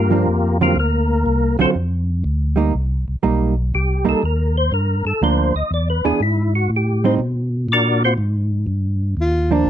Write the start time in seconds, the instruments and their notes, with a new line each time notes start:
Already playing: tonewheel organ G2 A#3 F4 G4 A#4
0.11 hollow-body jazz guitar F3 A#3 D4
0.27 tonewheel organ F2
0.61 hollow-body jazz guitar D3 F#3 C4 F4, tonewheel organ A#3 F4 G4 A#4
0.76 tonewheel organ D2 A#3 A#4
1.26 tonewheel organ C2
1.58 tonewheel organ C2 C4 F#4 A4 C5, hollow-body jazz guitar D3 F#3 C4 F4
1.75 tonewheel organ F2
2.24 tonewheel organ D2
2.56 hollow-body jazz guitar G3 A#3 D#4
2.74 tonewheel organ C2
3.08 tonewheel organ C2
3.23 tonewheel organ B1, hollow-body jazz guitar G3 A#3 D#4
3.74 tonewheel organ C2 G4
4.05 tonewheel organ C2, hollow-body jazz guitar G3 A#3 D#4
4.09 tonewheel organ A4
4.23 tonewheel organ D#2 A#4
4.57 tonewheel organ C5
4.72 tonewheel organ G2 A#4
5.05 tonewheel organ G2 A4
5.21 tonewheel organ D2 C5, hollow-body jazz guitar F3 A#3 D4
5.54 tonewheel organ D2 D#5
5.71 tonewheel organ E2 D5
5.90 tonewheel organ B4
6.04 tonewheel organ E2 G#4, hollow-body jazz guitar E3 B3 D4 G#4
6.20 tonewheel organ G#2 E4
6.55 tonewheel organ F#4
6.69 tonewheel organ A2
6.76 tonewheel organ G4
7.04 hollow-body jazz guitar G3 C4 D#4, tonewheel organ C5
7.19 tonewheel organ B2
7.68 tonewheel organ A#2 D5
7.73 tonewheel organ D4 F#4 A#4
8.04 tonewheel organ C4 F4 F#4 C5
8.18 tonewheel organ G#2
8.67 tonewheel organ G2
9.17 tonewheel organ D#2
9.21 alto saxophone F4
9.51 hollow-body jazz guitar F3 A#3 D4, alto saxophone D4
9.66 tonewheel organ D2